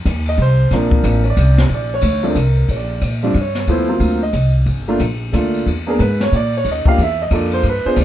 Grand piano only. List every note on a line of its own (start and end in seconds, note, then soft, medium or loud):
0.29 0.40 D#5 loud
0.42 0.71 C5 medium
0.72 1.22 F3 medium
0.72 1.22 A#3 medium
0.72 1.22 C4 medium
0.72 1.22 D4 medium
0.72 1.24 A#4 medium
1.30 1.58 D5 medium
1.74 1.92 D5 medium
1.94 2.23 C#5 medium
2.23 2.35 F3 medium
2.23 2.35 A3 medium
2.23 2.35 C4 medium
2.23 2.36 D4 medium
2.28 2.68 A#4 medium
2.71 2.72 C#5 soft
2.76 3.04 D5 medium
3.23 3.34 F3 medium
3.23 3.34 G3 medium
3.23 3.34 C4 medium
3.23 3.35 D4 medium
3.27 3.37 D5 medium
3.41 3.69 C#5 medium
3.68 3.87 F3 medium
3.68 3.87 A3 medium
3.68 3.87 B3 medium
3.68 3.87 E4 medium
3.68 4.19 C5 medium
3.88 4.18 F#3 medium
3.88 4.18 A#3 medium
3.88 4.18 C4 medium
3.88 4.18 F4 medium
4.23 4.53 D#5 medium
4.88 4.99 A3 medium
4.88 4.99 A#3 medium
4.88 5.00 D4 medium
4.88 5.00 F4 medium
5.32 5.66 A3 medium
5.32 5.66 A#3 medium
5.32 5.67 D4 medium
5.32 5.67 F4 medium
5.87 5.98 A#3 medium
5.87 5.98 B3 medium
5.87 5.99 D4 medium
5.87 5.99 G#4 medium
5.87 6.01 A#4 medium
6.01 6.20 B4 medium
6.22 6.33 C#5 medium
6.36 6.54 D5 loud
6.57 6.67 C#5 medium
6.71 6.88 D#5 medium
6.86 6.97 A#3 medium
6.86 6.98 D4 medium
6.86 6.98 F4 medium
6.86 6.98 G4 medium
6.86 6.99 F5 loud
7.02 7.20 E5 loud
7.22 7.33 D#5 medium
7.32 7.65 A#3 medium
7.32 7.65 D4 medium
7.32 7.65 F4 medium
7.32 7.65 A4 medium
7.32 7.53 D5 medium
7.54 7.65 C5 medium
7.69 7.87 B4 medium
7.85 7.96 B3 medium
7.85 7.97 D4 medium
7.85 7.97 F4 medium
7.85 7.97 G#4 medium
7.85 7.98 C5 loud
8.01 8.05 D5 medium